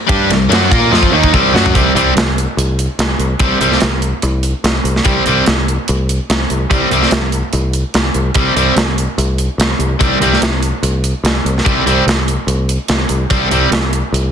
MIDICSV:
0, 0, Header, 1, 4, 480
1, 0, Start_track
1, 0, Key_signature, -3, "minor"
1, 0, Tempo, 412939
1, 109, Time_signature, 4, 2, 24, 8
1, 16643, End_track
2, 0, Start_track
2, 0, Title_t, "Distorted electric guitar"
2, 0, Program_c, 0, 30
2, 78, Note_on_c, 0, 55, 80
2, 90, Note_on_c, 0, 62, 89
2, 97, Note_on_c, 0, 67, 103
2, 321, Note_off_c, 0, 55, 0
2, 327, Note_on_c, 0, 48, 55
2, 333, Note_off_c, 0, 62, 0
2, 335, Note_on_c, 0, 55, 71
2, 336, Note_off_c, 0, 67, 0
2, 530, Note_off_c, 0, 48, 0
2, 534, Note_off_c, 0, 55, 0
2, 568, Note_on_c, 0, 54, 86
2, 581, Note_on_c, 0, 61, 89
2, 588, Note_on_c, 0, 66, 89
2, 812, Note_off_c, 0, 54, 0
2, 818, Note_off_c, 0, 61, 0
2, 821, Note_off_c, 0, 66, 0
2, 822, Note_on_c, 0, 58, 78
2, 831, Note_on_c, 0, 65, 97
2, 835, Note_on_c, 0, 70, 112
2, 1058, Note_off_c, 0, 58, 0
2, 1058, Note_on_c, 0, 53, 82
2, 1063, Note_off_c, 0, 65, 0
2, 1063, Note_on_c, 0, 60, 91
2, 1065, Note_off_c, 0, 70, 0
2, 1078, Note_on_c, 0, 65, 102
2, 1296, Note_off_c, 0, 53, 0
2, 1299, Note_off_c, 0, 60, 0
2, 1301, Note_on_c, 0, 51, 88
2, 1307, Note_off_c, 0, 65, 0
2, 1309, Note_on_c, 0, 58, 88
2, 1319, Note_on_c, 0, 63, 105
2, 1531, Note_off_c, 0, 51, 0
2, 1535, Note_on_c, 0, 48, 90
2, 1538, Note_off_c, 0, 58, 0
2, 1542, Note_on_c, 0, 55, 87
2, 1545, Note_off_c, 0, 63, 0
2, 1550, Note_on_c, 0, 60, 107
2, 1775, Note_off_c, 0, 48, 0
2, 1779, Note_off_c, 0, 55, 0
2, 1783, Note_off_c, 0, 60, 0
2, 1783, Note_on_c, 0, 54, 94
2, 1794, Note_on_c, 0, 61, 102
2, 1802, Note_on_c, 0, 66, 99
2, 2012, Note_off_c, 0, 54, 0
2, 2016, Note_on_c, 0, 48, 80
2, 2024, Note_off_c, 0, 61, 0
2, 2029, Note_off_c, 0, 66, 0
2, 2029, Note_on_c, 0, 55, 84
2, 2034, Note_on_c, 0, 60, 83
2, 2215, Note_off_c, 0, 48, 0
2, 2221, Note_off_c, 0, 55, 0
2, 2224, Note_off_c, 0, 60, 0
2, 2263, Note_on_c, 0, 48, 80
2, 2276, Note_on_c, 0, 55, 76
2, 2283, Note_on_c, 0, 60, 98
2, 2459, Note_off_c, 0, 48, 0
2, 2465, Note_off_c, 0, 55, 0
2, 2469, Note_off_c, 0, 60, 0
2, 3949, Note_on_c, 0, 48, 80
2, 3963, Note_on_c, 0, 55, 81
2, 3972, Note_on_c, 0, 60, 85
2, 4143, Note_off_c, 0, 48, 0
2, 4150, Note_off_c, 0, 55, 0
2, 4154, Note_off_c, 0, 60, 0
2, 4185, Note_on_c, 0, 48, 83
2, 4198, Note_on_c, 0, 55, 91
2, 4204, Note_on_c, 0, 60, 91
2, 4381, Note_off_c, 0, 48, 0
2, 4388, Note_off_c, 0, 55, 0
2, 4390, Note_off_c, 0, 60, 0
2, 5863, Note_on_c, 0, 48, 84
2, 5875, Note_on_c, 0, 55, 91
2, 5886, Note_on_c, 0, 60, 92
2, 6061, Note_off_c, 0, 48, 0
2, 6067, Note_off_c, 0, 55, 0
2, 6072, Note_off_c, 0, 60, 0
2, 6118, Note_on_c, 0, 48, 80
2, 6130, Note_on_c, 0, 55, 78
2, 6135, Note_on_c, 0, 60, 83
2, 6308, Note_off_c, 0, 48, 0
2, 6315, Note_off_c, 0, 55, 0
2, 6317, Note_off_c, 0, 60, 0
2, 7791, Note_on_c, 0, 48, 77
2, 7803, Note_on_c, 0, 55, 94
2, 7811, Note_on_c, 0, 60, 87
2, 7985, Note_off_c, 0, 48, 0
2, 7991, Note_off_c, 0, 55, 0
2, 7995, Note_off_c, 0, 60, 0
2, 8039, Note_on_c, 0, 48, 77
2, 8049, Note_on_c, 0, 55, 98
2, 8061, Note_on_c, 0, 60, 93
2, 8229, Note_off_c, 0, 48, 0
2, 8234, Note_off_c, 0, 55, 0
2, 8240, Note_off_c, 0, 60, 0
2, 9716, Note_on_c, 0, 48, 77
2, 9723, Note_on_c, 0, 55, 83
2, 9730, Note_on_c, 0, 60, 91
2, 9907, Note_off_c, 0, 48, 0
2, 9911, Note_off_c, 0, 55, 0
2, 9915, Note_off_c, 0, 60, 0
2, 9952, Note_on_c, 0, 48, 77
2, 9964, Note_on_c, 0, 55, 87
2, 9967, Note_on_c, 0, 60, 82
2, 10146, Note_off_c, 0, 48, 0
2, 10151, Note_off_c, 0, 55, 0
2, 10153, Note_off_c, 0, 60, 0
2, 11615, Note_on_c, 0, 48, 75
2, 11625, Note_on_c, 0, 55, 84
2, 11633, Note_on_c, 0, 60, 97
2, 11817, Note_off_c, 0, 48, 0
2, 11821, Note_off_c, 0, 55, 0
2, 11826, Note_off_c, 0, 60, 0
2, 11870, Note_on_c, 0, 48, 79
2, 11877, Note_on_c, 0, 55, 86
2, 11888, Note_on_c, 0, 60, 107
2, 12064, Note_off_c, 0, 48, 0
2, 12067, Note_off_c, 0, 55, 0
2, 12073, Note_off_c, 0, 60, 0
2, 13541, Note_on_c, 0, 48, 91
2, 13555, Note_on_c, 0, 55, 89
2, 13559, Note_on_c, 0, 60, 92
2, 13739, Note_off_c, 0, 48, 0
2, 13746, Note_off_c, 0, 55, 0
2, 13748, Note_off_c, 0, 60, 0
2, 13786, Note_on_c, 0, 48, 84
2, 13795, Note_on_c, 0, 55, 94
2, 13801, Note_on_c, 0, 60, 86
2, 13981, Note_off_c, 0, 48, 0
2, 13986, Note_off_c, 0, 55, 0
2, 13989, Note_off_c, 0, 60, 0
2, 15463, Note_on_c, 0, 48, 80
2, 15471, Note_on_c, 0, 55, 91
2, 15478, Note_on_c, 0, 60, 93
2, 15659, Note_off_c, 0, 48, 0
2, 15663, Note_off_c, 0, 55, 0
2, 15667, Note_off_c, 0, 60, 0
2, 15700, Note_on_c, 0, 48, 86
2, 15714, Note_on_c, 0, 55, 91
2, 15724, Note_on_c, 0, 60, 90
2, 15898, Note_off_c, 0, 48, 0
2, 15905, Note_off_c, 0, 55, 0
2, 15910, Note_off_c, 0, 60, 0
2, 16643, End_track
3, 0, Start_track
3, 0, Title_t, "Picked electric bass"
3, 0, Program_c, 1, 34
3, 107, Note_on_c, 1, 43, 92
3, 331, Note_off_c, 1, 43, 0
3, 349, Note_on_c, 1, 36, 72
3, 567, Note_off_c, 1, 36, 0
3, 574, Note_on_c, 1, 42, 94
3, 805, Note_off_c, 1, 42, 0
3, 827, Note_on_c, 1, 46, 83
3, 1051, Note_off_c, 1, 46, 0
3, 1064, Note_on_c, 1, 41, 80
3, 1290, Note_off_c, 1, 41, 0
3, 1301, Note_on_c, 1, 39, 93
3, 1528, Note_off_c, 1, 39, 0
3, 1553, Note_on_c, 1, 36, 86
3, 1775, Note_off_c, 1, 36, 0
3, 1785, Note_on_c, 1, 42, 78
3, 2010, Note_off_c, 1, 42, 0
3, 2037, Note_on_c, 1, 36, 82
3, 2206, Note_off_c, 1, 36, 0
3, 2267, Note_on_c, 1, 36, 77
3, 2440, Note_off_c, 1, 36, 0
3, 2506, Note_on_c, 1, 36, 74
3, 2852, Note_off_c, 1, 36, 0
3, 2989, Note_on_c, 1, 36, 80
3, 3334, Note_off_c, 1, 36, 0
3, 3473, Note_on_c, 1, 36, 83
3, 3645, Note_off_c, 1, 36, 0
3, 3703, Note_on_c, 1, 36, 75
3, 3878, Note_off_c, 1, 36, 0
3, 3950, Note_on_c, 1, 36, 85
3, 4123, Note_off_c, 1, 36, 0
3, 4195, Note_on_c, 1, 36, 66
3, 4366, Note_off_c, 1, 36, 0
3, 4447, Note_on_c, 1, 36, 80
3, 4786, Note_off_c, 1, 36, 0
3, 4917, Note_on_c, 1, 36, 84
3, 5260, Note_off_c, 1, 36, 0
3, 5392, Note_on_c, 1, 36, 88
3, 5565, Note_off_c, 1, 36, 0
3, 5626, Note_on_c, 1, 36, 82
3, 5801, Note_off_c, 1, 36, 0
3, 5875, Note_on_c, 1, 36, 87
3, 6047, Note_off_c, 1, 36, 0
3, 6115, Note_on_c, 1, 36, 62
3, 6287, Note_off_c, 1, 36, 0
3, 6362, Note_on_c, 1, 36, 74
3, 6703, Note_off_c, 1, 36, 0
3, 6847, Note_on_c, 1, 36, 82
3, 7187, Note_off_c, 1, 36, 0
3, 7320, Note_on_c, 1, 36, 85
3, 7490, Note_off_c, 1, 36, 0
3, 7556, Note_on_c, 1, 36, 67
3, 7728, Note_off_c, 1, 36, 0
3, 7794, Note_on_c, 1, 36, 77
3, 7967, Note_off_c, 1, 36, 0
3, 8026, Note_on_c, 1, 36, 66
3, 8202, Note_off_c, 1, 36, 0
3, 8270, Note_on_c, 1, 36, 81
3, 8616, Note_off_c, 1, 36, 0
3, 8755, Note_on_c, 1, 36, 80
3, 9099, Note_off_c, 1, 36, 0
3, 9234, Note_on_c, 1, 36, 83
3, 9406, Note_off_c, 1, 36, 0
3, 9468, Note_on_c, 1, 36, 73
3, 9643, Note_off_c, 1, 36, 0
3, 9707, Note_on_c, 1, 36, 92
3, 9882, Note_off_c, 1, 36, 0
3, 9943, Note_on_c, 1, 36, 71
3, 10119, Note_off_c, 1, 36, 0
3, 10183, Note_on_c, 1, 36, 83
3, 10531, Note_off_c, 1, 36, 0
3, 10668, Note_on_c, 1, 36, 83
3, 11014, Note_off_c, 1, 36, 0
3, 11137, Note_on_c, 1, 36, 75
3, 11315, Note_off_c, 1, 36, 0
3, 11379, Note_on_c, 1, 36, 82
3, 11556, Note_off_c, 1, 36, 0
3, 11630, Note_on_c, 1, 36, 94
3, 11803, Note_off_c, 1, 36, 0
3, 11860, Note_on_c, 1, 36, 80
3, 12037, Note_off_c, 1, 36, 0
3, 12106, Note_on_c, 1, 36, 82
3, 12453, Note_off_c, 1, 36, 0
3, 12583, Note_on_c, 1, 36, 80
3, 12931, Note_off_c, 1, 36, 0
3, 13059, Note_on_c, 1, 36, 83
3, 13236, Note_off_c, 1, 36, 0
3, 13305, Note_on_c, 1, 36, 76
3, 13480, Note_off_c, 1, 36, 0
3, 13555, Note_on_c, 1, 36, 89
3, 13726, Note_off_c, 1, 36, 0
3, 13789, Note_on_c, 1, 36, 78
3, 13962, Note_off_c, 1, 36, 0
3, 14022, Note_on_c, 1, 36, 87
3, 14370, Note_off_c, 1, 36, 0
3, 14495, Note_on_c, 1, 36, 82
3, 14845, Note_off_c, 1, 36, 0
3, 14984, Note_on_c, 1, 36, 88
3, 15159, Note_off_c, 1, 36, 0
3, 15221, Note_on_c, 1, 36, 73
3, 15397, Note_off_c, 1, 36, 0
3, 15467, Note_on_c, 1, 36, 87
3, 15641, Note_off_c, 1, 36, 0
3, 15698, Note_on_c, 1, 36, 69
3, 15875, Note_off_c, 1, 36, 0
3, 15939, Note_on_c, 1, 36, 81
3, 16287, Note_off_c, 1, 36, 0
3, 16418, Note_on_c, 1, 36, 79
3, 16643, Note_off_c, 1, 36, 0
3, 16643, End_track
4, 0, Start_track
4, 0, Title_t, "Drums"
4, 106, Note_on_c, 9, 51, 92
4, 107, Note_on_c, 9, 36, 103
4, 222, Note_off_c, 9, 51, 0
4, 223, Note_off_c, 9, 36, 0
4, 353, Note_on_c, 9, 51, 70
4, 367, Note_on_c, 9, 38, 31
4, 470, Note_off_c, 9, 51, 0
4, 484, Note_off_c, 9, 38, 0
4, 602, Note_on_c, 9, 51, 86
4, 616, Note_on_c, 9, 38, 97
4, 718, Note_off_c, 9, 51, 0
4, 732, Note_off_c, 9, 38, 0
4, 832, Note_on_c, 9, 36, 106
4, 842, Note_on_c, 9, 51, 68
4, 948, Note_off_c, 9, 36, 0
4, 959, Note_off_c, 9, 51, 0
4, 1090, Note_on_c, 9, 38, 58
4, 1193, Note_on_c, 9, 36, 50
4, 1207, Note_off_c, 9, 38, 0
4, 1310, Note_off_c, 9, 36, 0
4, 1435, Note_on_c, 9, 36, 69
4, 1552, Note_off_c, 9, 36, 0
4, 1555, Note_on_c, 9, 36, 86
4, 1671, Note_off_c, 9, 36, 0
4, 1814, Note_on_c, 9, 38, 79
4, 1928, Note_on_c, 9, 43, 78
4, 1930, Note_off_c, 9, 38, 0
4, 2037, Note_on_c, 9, 36, 99
4, 2044, Note_off_c, 9, 43, 0
4, 2047, Note_on_c, 9, 42, 73
4, 2153, Note_off_c, 9, 36, 0
4, 2164, Note_off_c, 9, 42, 0
4, 2285, Note_on_c, 9, 42, 61
4, 2401, Note_off_c, 9, 42, 0
4, 2520, Note_on_c, 9, 42, 80
4, 2534, Note_on_c, 9, 38, 106
4, 2636, Note_off_c, 9, 42, 0
4, 2650, Note_off_c, 9, 38, 0
4, 2768, Note_on_c, 9, 42, 53
4, 2884, Note_off_c, 9, 42, 0
4, 3005, Note_on_c, 9, 42, 78
4, 3121, Note_off_c, 9, 42, 0
4, 3242, Note_on_c, 9, 42, 62
4, 3358, Note_off_c, 9, 42, 0
4, 3476, Note_on_c, 9, 42, 83
4, 3490, Note_on_c, 9, 38, 102
4, 3593, Note_off_c, 9, 42, 0
4, 3606, Note_off_c, 9, 38, 0
4, 3714, Note_on_c, 9, 42, 51
4, 3830, Note_off_c, 9, 42, 0
4, 3946, Note_on_c, 9, 42, 81
4, 3953, Note_on_c, 9, 36, 105
4, 4062, Note_off_c, 9, 42, 0
4, 4070, Note_off_c, 9, 36, 0
4, 4195, Note_on_c, 9, 42, 65
4, 4311, Note_off_c, 9, 42, 0
4, 4326, Note_on_c, 9, 38, 25
4, 4422, Note_on_c, 9, 42, 76
4, 4436, Note_off_c, 9, 38, 0
4, 4436, Note_on_c, 9, 38, 100
4, 4539, Note_off_c, 9, 42, 0
4, 4553, Note_off_c, 9, 38, 0
4, 4673, Note_on_c, 9, 42, 56
4, 4789, Note_off_c, 9, 42, 0
4, 4910, Note_on_c, 9, 42, 74
4, 5026, Note_off_c, 9, 42, 0
4, 5150, Note_on_c, 9, 42, 61
4, 5266, Note_off_c, 9, 42, 0
4, 5398, Note_on_c, 9, 42, 74
4, 5412, Note_on_c, 9, 38, 95
4, 5514, Note_off_c, 9, 42, 0
4, 5528, Note_off_c, 9, 38, 0
4, 5639, Note_on_c, 9, 42, 48
4, 5756, Note_off_c, 9, 42, 0
4, 5769, Note_on_c, 9, 38, 28
4, 5866, Note_on_c, 9, 42, 70
4, 5876, Note_on_c, 9, 36, 101
4, 5885, Note_off_c, 9, 38, 0
4, 5983, Note_off_c, 9, 42, 0
4, 5992, Note_off_c, 9, 36, 0
4, 6111, Note_on_c, 9, 42, 58
4, 6227, Note_off_c, 9, 42, 0
4, 6350, Note_on_c, 9, 42, 80
4, 6364, Note_on_c, 9, 38, 102
4, 6467, Note_off_c, 9, 42, 0
4, 6481, Note_off_c, 9, 38, 0
4, 6606, Note_on_c, 9, 42, 53
4, 6723, Note_off_c, 9, 42, 0
4, 6834, Note_on_c, 9, 42, 73
4, 6950, Note_off_c, 9, 42, 0
4, 7082, Note_on_c, 9, 42, 62
4, 7198, Note_off_c, 9, 42, 0
4, 7321, Note_on_c, 9, 42, 81
4, 7335, Note_on_c, 9, 38, 106
4, 7438, Note_off_c, 9, 42, 0
4, 7452, Note_off_c, 9, 38, 0
4, 7556, Note_on_c, 9, 42, 52
4, 7672, Note_off_c, 9, 42, 0
4, 7797, Note_on_c, 9, 42, 75
4, 7798, Note_on_c, 9, 36, 106
4, 7913, Note_off_c, 9, 42, 0
4, 7914, Note_off_c, 9, 36, 0
4, 8035, Note_on_c, 9, 42, 62
4, 8152, Note_off_c, 9, 42, 0
4, 8169, Note_on_c, 9, 38, 30
4, 8266, Note_on_c, 9, 42, 76
4, 8280, Note_off_c, 9, 38, 0
4, 8280, Note_on_c, 9, 38, 109
4, 8382, Note_off_c, 9, 42, 0
4, 8396, Note_off_c, 9, 38, 0
4, 8512, Note_on_c, 9, 42, 57
4, 8629, Note_off_c, 9, 42, 0
4, 8749, Note_on_c, 9, 42, 72
4, 8865, Note_off_c, 9, 42, 0
4, 8991, Note_on_c, 9, 42, 54
4, 9107, Note_off_c, 9, 42, 0
4, 9229, Note_on_c, 9, 42, 72
4, 9243, Note_on_c, 9, 38, 104
4, 9346, Note_off_c, 9, 42, 0
4, 9360, Note_off_c, 9, 38, 0
4, 9466, Note_on_c, 9, 42, 49
4, 9582, Note_off_c, 9, 42, 0
4, 9700, Note_on_c, 9, 42, 80
4, 9711, Note_on_c, 9, 36, 103
4, 9816, Note_off_c, 9, 42, 0
4, 9827, Note_off_c, 9, 36, 0
4, 9957, Note_on_c, 9, 42, 57
4, 10074, Note_off_c, 9, 42, 0
4, 10189, Note_on_c, 9, 42, 68
4, 10203, Note_on_c, 9, 38, 95
4, 10306, Note_off_c, 9, 42, 0
4, 10320, Note_off_c, 9, 38, 0
4, 10439, Note_on_c, 9, 42, 58
4, 10555, Note_off_c, 9, 42, 0
4, 10676, Note_on_c, 9, 42, 73
4, 10792, Note_off_c, 9, 42, 0
4, 10908, Note_on_c, 9, 42, 61
4, 11024, Note_off_c, 9, 42, 0
4, 11156, Note_on_c, 9, 42, 84
4, 11170, Note_on_c, 9, 38, 107
4, 11272, Note_off_c, 9, 42, 0
4, 11286, Note_off_c, 9, 38, 0
4, 11389, Note_on_c, 9, 42, 56
4, 11505, Note_off_c, 9, 42, 0
4, 11632, Note_on_c, 9, 42, 89
4, 11633, Note_on_c, 9, 36, 97
4, 11748, Note_off_c, 9, 42, 0
4, 11750, Note_off_c, 9, 36, 0
4, 11876, Note_on_c, 9, 42, 59
4, 11992, Note_off_c, 9, 42, 0
4, 12011, Note_on_c, 9, 38, 29
4, 12111, Note_on_c, 9, 42, 83
4, 12125, Note_off_c, 9, 38, 0
4, 12125, Note_on_c, 9, 38, 108
4, 12228, Note_off_c, 9, 42, 0
4, 12241, Note_off_c, 9, 38, 0
4, 12351, Note_on_c, 9, 42, 66
4, 12467, Note_off_c, 9, 42, 0
4, 12592, Note_on_c, 9, 42, 81
4, 12708, Note_off_c, 9, 42, 0
4, 12831, Note_on_c, 9, 42, 67
4, 12947, Note_off_c, 9, 42, 0
4, 13074, Note_on_c, 9, 42, 76
4, 13088, Note_on_c, 9, 38, 103
4, 13190, Note_off_c, 9, 42, 0
4, 13204, Note_off_c, 9, 38, 0
4, 13324, Note_on_c, 9, 42, 50
4, 13440, Note_off_c, 9, 42, 0
4, 13459, Note_on_c, 9, 38, 30
4, 13555, Note_on_c, 9, 36, 110
4, 13557, Note_on_c, 9, 42, 69
4, 13576, Note_off_c, 9, 38, 0
4, 13671, Note_off_c, 9, 36, 0
4, 13673, Note_off_c, 9, 42, 0
4, 13798, Note_on_c, 9, 42, 55
4, 13914, Note_off_c, 9, 42, 0
4, 14041, Note_on_c, 9, 42, 67
4, 14055, Note_on_c, 9, 38, 94
4, 14157, Note_off_c, 9, 42, 0
4, 14171, Note_off_c, 9, 38, 0
4, 14274, Note_on_c, 9, 42, 56
4, 14390, Note_off_c, 9, 42, 0
4, 14508, Note_on_c, 9, 42, 63
4, 14624, Note_off_c, 9, 42, 0
4, 14751, Note_on_c, 9, 42, 55
4, 14867, Note_off_c, 9, 42, 0
4, 14976, Note_on_c, 9, 42, 79
4, 14990, Note_on_c, 9, 38, 97
4, 15093, Note_off_c, 9, 42, 0
4, 15107, Note_off_c, 9, 38, 0
4, 15216, Note_on_c, 9, 42, 54
4, 15332, Note_off_c, 9, 42, 0
4, 15461, Note_on_c, 9, 42, 81
4, 15468, Note_on_c, 9, 36, 101
4, 15578, Note_off_c, 9, 42, 0
4, 15584, Note_off_c, 9, 36, 0
4, 15708, Note_on_c, 9, 42, 64
4, 15824, Note_off_c, 9, 42, 0
4, 15949, Note_on_c, 9, 42, 73
4, 15963, Note_on_c, 9, 38, 107
4, 16065, Note_off_c, 9, 42, 0
4, 16079, Note_off_c, 9, 38, 0
4, 16191, Note_on_c, 9, 42, 66
4, 16308, Note_off_c, 9, 42, 0
4, 16439, Note_on_c, 9, 42, 73
4, 16555, Note_off_c, 9, 42, 0
4, 16643, End_track
0, 0, End_of_file